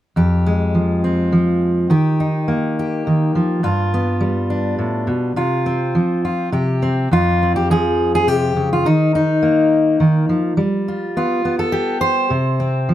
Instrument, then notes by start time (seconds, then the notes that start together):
steel-string acoustic guitar
0.16 F2 G4
0.46 G#3
0.74 F3
1.04 C4
1.32 F3
1.90 D#3 G4
2.20 D#4
2.48 A#3
2.79 G4
3.07 D#3
3.35 F3
3.63 G2 F4
3.94 B3
4.21 G3
4.50 D4
4.79 A2
5.07 B2
5.36 C3 F4
5.66 C4
5.95 F3
6.25 F4
6.52 C3 G4
6.82 C4
7.11 F2 F4
7.43 C4
7.56 G4
7.70 F3 G#4
8.15 G#4
8.27 C3 G4
8.56 C#3
8.73 F4
8.86 D#3 D#4
9.15 D#4
9.43 A#3
10.00 D#3
10.29 F3
10.57 G3
10.88 F4
11.17 B3 F4
11.45 B3
11.59 A4
11.72 G4
12.01 C5
12.30 C3
12.60 C4
12.89 F3